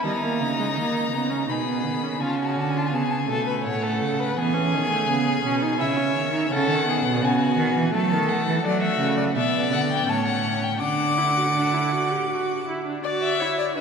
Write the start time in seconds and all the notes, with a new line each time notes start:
0.03 D#3 G3 D#4 A#5
0.23 A#3
0.41 C#3
0.60 G#3
0.77 D#3 A#3
1.13 C#3 B3
1.30 C#4
1.48 B2 D#4 G#4 B5
1.67 B3
1.85 D#3
2.03 C#4
2.20 C#3 C#4 F4 G#5
2.29 A5
2.36 G#5
2.41 F#4
2.45 A5
2.53 D3 G#5
2.61 A5
2.70 G#5
2.76 F4 A5
2.86 G#5
2.92 C#3 B3 G#4 A5
3.03 G#5
3.10 A5
3.19 G#5
3.29 B2 A3 A4
3.47 B4
3.64 A2 C#5 F#5
3.83 A4
4.01 C#3
4.20 B4
4.36 E3 B3 G#4 G#5
4.54 C#4
4.73 D#3
4.90 A3
5.09 C#3 B3
5.44 B2 C#4
5.62 D#4
5.80 C#3 E4 C#5 E5
5.97 C#4
6.17 D#3
6.33 D#4
6.51 C#3 C#4 A4 F#5
6.69 D#3
6.87 B3 G#4
7.05 B2
7.22 C#3 F#4 G#5
7.58 D#3
7.76 E3
7.93 F#3 A3 A4 A5
8.12 D#3
8.29 F#5
8.47 E3
8.64 F#3 A3 F#4 D5
8.82 E5
9.00 C#3
9.17 D5
9.35 B2 B3 D5 E5
9.72 D3 F#5
9.91 G5
10.07 A2 C#4 C#5 A5
10.25 F#5
10.63 G5
10.81 D3 D4 F#5 D6
11.18 E4
11.37 F#4
11.56 D4
11.74 E4
11.92 F#4
12.11 G4
12.30 F#4
12.68 E4
12.86 D4
13.04 F#4 D5
13.21 E5
13.40 E4 C#5
13.59 D5
13.76 D4 E5